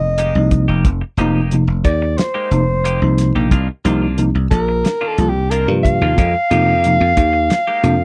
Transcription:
Already playing: slap bass F1, soprano saxophone D#5
0.03 tine electric piano A#3 D#4
0.18 clean electric guitar G#3 A#3 D#4 G4, closed hi-hat
0.35 slap bass C2, tine electric piano C3 F3 A#3 D#4
0.51 muted clean electric guitar stroke, kick, closed hi-hat
0.68 slap bass F1, clean electric guitar A#3 D#4 G4
0.85 slap bass F1, kick, closed hi-hat
1.01 muted clean electric guitar stroke
1.17 slap bass F1, tine electric piano C3 F3 A#3 D#4, clean electric guitar G#3 A#3 D#4 G4, closed hi-hat
1.35 clean electric guitar A#3 D#4 G4
1.51 tine electric piano C3 F3 A#3 D#4, closed hi-hat
1.67 slap bass F1, tine electric piano A#3, muted clean electric guitar stroke
1.72 tine electric piano D#4
1.84 slap bass D#2, soprano saxophone D5, muted clean electric guitar stroke, kick, closed hi-hat
2.02 muted clean electric guitar stroke
2.18 tine electric piano A#3 F4, soprano saxophone C5, muted clean electric guitar stroke, snare, closed hi-hat
2.34 clean electric guitar G#3 A#3 D#4 G4
2.51 slap bass F1, tine electric piano C3 F3 A#3 D#4, muted clean electric guitar stroke, closed hi-hat
2.69 tine electric piano A#3 D#4
2.84 clean electric guitar G#3 A#3 D#4 G4, closed hi-hat
3.02 slap bass C2, tine electric piano C3 F3 A#3 D#4, muted clean electric guitar stroke
3.18 muted clean electric guitar stroke, snare, closed hi-hat
3.35 slap bass A#1, clean electric guitar A#3 D#4 G4
3.51 slap bass C2, clean electric guitar D#3 A#3 D4 F4, kick, closed hi-hat
3.69 muted clean electric guitar stroke
3.85 slap bass C2, tine electric piano C3 F3 A#3 D#4, clean electric guitar D#3 A#3 D4 F4, closed hi-hat
4.02 clean electric guitar A#3 D4 F4
4.18 tine electric piano C3 F3 A#3 D#4, closed hi-hat
4.35 slap bass C2, muted clean electric guitar stroke
4.51 slap bass A#1, soprano saxophone A#4, muted clean electric guitar stroke, kick, closed hi-hat
4.69 muted clean electric guitar stroke
4.84 tine electric piano A#3 D#4, muted clean electric guitar stroke, snare, closed hi-hat
5.01 clean electric guitar D#3 A#3 D4 F4
5.08 soprano saxophone A4
5.18 slap bass C2, tine electric piano C3 F3 A#3 F4, closed hi-hat
5.29 soprano saxophone G4
5.37 tine electric piano A#3 D#4
5.50 clean electric guitar D#3 A#3 D4 F4, soprano saxophone A#4, closed hi-hat
5.68 slap bass G2, tine electric piano C3 F3 A#3 F4, muted clean electric guitar stroke
5.83 soprano saxophone F5, muted clean electric guitar stroke, kick, closed hi-hat
6.01 slap bass D#2, clean electric guitar A#3 D4 F4
6.18 slap bass F2, clean electric guitar G#3 A#3 D#4 G4, kick, closed hi-hat
6.35 muted clean electric guitar stroke
6.50 slap bass F2, tine electric piano C3 F3 A#3 D#4, clean electric guitar G#3 A#3 D#4 G4, closed hi-hat
6.67 clean electric guitar A#3 D#4 G4
6.84 tine electric piano C3 F3 A#3 D#4, closed hi-hat
7.01 slap bass F2, tine electric piano A#3 F4, muted clean electric guitar stroke
7.17 slap bass D#2, muted clean electric guitar stroke, kick, closed hi-hat
7.33 muted clean electric guitar stroke
7.50 tine electric piano A#3 F4, muted clean electric guitar stroke, snare, closed hi-hat
7.67 clean electric guitar G#3 A#3 D#4 G4
7.83 slap bass F2, tine electric piano C3 F3 A#3 D4, closed hi-hat

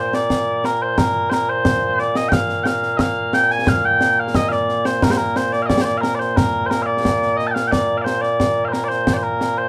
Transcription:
Already playing: bagpipes A#2 A#3 C5
0.13 bagpipes D5, snare
0.30 concert bass drum, snare
0.64 bagpipes A#4, snare
0.82 bagpipes C5
0.98 bagpipes A#4, concert bass drum, snare
1.30 bagpipes A#4 C5, snare
1.49 bagpipes C5
1.65 concert bass drum, snare
1.99 bagpipes D5, snare
2.15 bagpipes D#5, snare
2.29 bagpipes G5, concert bass drum, snare
2.33 bagpipes F5
2.49 snare
2.63 bagpipes F5 G5, snare
2.83 snare
2.97 bagpipes D#5 F5, concert bass drum, snare
3.33 bagpipes G5, snare
3.50 bagpipes G#5, snare
3.67 bagpipes F5, concert bass drum, snare
3.85 bagpipes G5
4.01 snare
4.20 bagpipes F5
4.35 bagpipes D#5, concert bass drum, snare
4.48 bagpipes D5 F5, snare
4.69 snare
4.85 bagpipes C5, snare
5.02 bagpipes A#4, concert bass drum, snare
5.11 bagpipes C5
5.17 bagpipes A#4, snare
5.36 bagpipes C5, snare
5.53 bagpipes D5, snare
5.62 bagpipes D#5 F5
5.68 bagpipes D5, concert bass drum, snare
5.82 bagpipes C5 D5
5.97 bagpipes A#4 F5
6.03 snare
6.15 bagpipes D5
6.19 bagpipes C5, snare
6.36 bagpipes A#4, concert bass drum, snare
6.66 bagpipes C5
6.70 bagpipes A#4, snare
6.82 bagpipes D5 F5
7.05 concert bass drum, snare
7.22 snare
7.37 bagpipes D#5, snare
7.47 bagpipes G5 A5
7.54 bagpipes F5, snare
7.67 bagpipes G5
7.71 bagpipes D5, concert bass drum, snare
7.97 bagpipes D5 F5
8.04 bagpipes C5, snare
8.21 bagpipes D5, snare
8.40 concert bass drum, snare
8.65 bagpipes C5 F5
8.72 bagpipes A#4, snare
8.84 bagpipes D5
8.88 bagpipes C5, snare
9.07 concert bass drum, snare
9.13 bagpipes C5 D5
9.23 bagpipes A#4
9.41 snare
9.58 bagpipes C5

